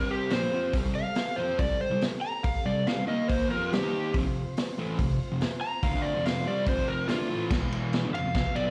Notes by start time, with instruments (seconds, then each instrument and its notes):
Already playing: distorted electric guitar C3 G3 C4, transistor combo organ C4 G4 C5
0.11 electric slide guitar G4
0.30 distorted electric guitar A#2 F3 A#3, electric slide guitar C5, snare, open hi-hat
0.52 distorted electric guitar F3 C4 F4
0.72 distorted electric guitar C3 G3, transistor combo organ C4 G4, kick, open hi-hat
0.76 transistor combo organ A4
0.85 distorted electric guitar C3 G3
0.95 electric slide guitar F5
1.15 snare, open hi-hat
1.36 distorted electric guitar F3 C4, electric slide guitar C5
1.41 distorted electric guitar F4
1.59 distorted electric guitar C3 G3, electric slide guitar D5, kick, open hi-hat
1.81 electric slide guitar C5
1.91 distorted electric guitar C3 G3
2.01 snare, open hi-hat
2.21 electric slide guitar A#5
2.43 electric slide guitar F5, kick, open hi-hat
2.66 distorted electric guitar C3 G3, electric slide guitar D5
2.87 distorted electric guitar C3 G3, electric slide guitar F5, snare, open hi-hat
2.98 distorted electric guitar C3 G3
3.07 distorted electric guitar D#3 A#3 D#4, transistor combo organ A#3 D#4, electric slide guitar D#5
3.11 transistor combo organ A#4
3.28 electric slide guitar C5, kick, open hi-hat
3.50 distorted electric guitar F3 C4 F4, transistor combo organ C4 G4, electric slide guitar A#4
3.54 transistor combo organ C5
3.72 distorted electric guitar C3 G3, electric slide guitar G4, snare, open hi-hat
3.81 distorted electric guitar D#3 A#3 D#4
4.14 distorted electric guitar F2 C3, transistor combo organ C4 F4 C5, kick, open hi-hat
4.25 distorted electric guitar F2 C3
4.57 snare, open hi-hat
4.78 distorted electric guitar A2 E3 A3
4.98 distorted electric guitar F2 C3, kick, open hi-hat
5.32 distorted electric guitar F2 C3
5.41 snare, open hi-hat
5.61 electric slide guitar A#5
5.83 distorted electric guitar D3 A3, electric slide guitar F5, kick, open hi-hat
5.94 distorted electric guitar D3 A3 D4
6.02 electric slide guitar D5
6.14 distorted electric guitar F2 C3 F3
6.25 electric slide guitar F5, snare, open hi-hat
6.46 distorted electric guitar C3 G3 C4, electric slide guitar D5
6.66 distorted electric guitar F2 C3 F3, electric slide guitar C5, kick, open hi-hat
6.88 electric slide guitar A#4
7.08 distorted electric guitar D3 A3 D4, electric slide guitar F4, snare, open hi-hat
7.29 distorted electric guitar A2 E3 A3
7.51 distorted electric guitar E2 B2 E3, kick, snare, crash
7.72 ride
7.93 snare, ride
8.05 distorted electric guitar G2 D3
8.15 distorted electric guitar F2 C3, electric slide guitar F5, ride
8.24 distorted electric guitar F2 C3
8.35 kick, snare, ride
8.55 distorted electric guitar B2 F#3 B3, electric slide guitar D5, ride